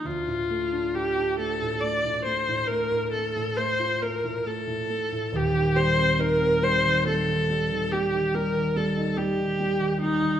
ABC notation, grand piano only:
X:1
M:12/8
L:1/16
Q:3/8=46
K:Dphr
V:1 name="Grand piano" clef=bass
D,, A,, A, D F D A, A,, A, A,, A, A,, A, A,, A, A,, A, F A, A,, A, A,, A, A,, | [E,,,E,,] E, G, C E C G, E, G, E, G, E, G, E, G, E, G, E G, E, G, E, G, E, |]